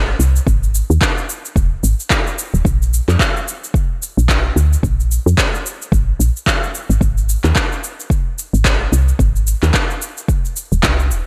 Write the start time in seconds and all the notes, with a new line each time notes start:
Already playing: G#1
0.19 C2, shaker
0.36 shaker
0.47 G#1, kick, shaker
0.63 shaker
0.75 shaker
0.90 D#2, shaker
1.01 kick, clap, shaker
1.18 shaker
1.30 shaker
1.45 shaker
1.56 D#1, kick, shaker
1.83 G#1, shaker
2.00 shaker
2.10 kick, clap, shaker
2.27 shaker
2.39 shaker
2.54 D#1, shaker
2.65 A#1, kick, shaker
2.82 shaker
2.94 shaker
3.08 F2, clap, shaker
3.19 kick, clap, shaker
3.37 shaker
3.48 shaker
3.64 shaker
3.74 kick, shaker
4.03 shaker
4.17 A#1, shaker
4.29 kick, clap, shaker
4.56 D2, shaker
4.73 shaker
4.83 A#1, kick, shaker
5.00 shaker
5.12 shaker
5.26 F2, shaker
5.38 kick, clap, shaker
5.55 shaker
5.66 shaker
5.82 shaker
5.92 G#1, kick, shaker
6.20 A#1, shaker
6.37 shaker
6.47 kick, clap, shaker
6.63 shaker
6.75 shaker
6.90 G#1, shaker
7.01 G#1, kick, shaker
7.18 shaker
7.29 shaker
7.44 D#2, clap, shaker
7.56 kick, clap, shaker
7.72 shaker
7.84 shaker
8.00 shaker
8.10 kick, shaker
8.39 shaker
8.53 G#1, shaker
8.65 kick, clap, shaker
8.92 C2, shaker
9.08 shaker
9.19 G#1, kick, shaker
9.36 shaker
9.47 shaker
9.63 D#2, clap, shaker
9.74 kick, clap, shaker
9.90 shaker
10.02 shaker
10.18 shaker
10.28 kick, shaker
10.45 shaker
10.56 shaker
10.72 D#1, shaker
10.83 C2, kick, clap, shaker
11.00 shaker
11.11 D#1, shaker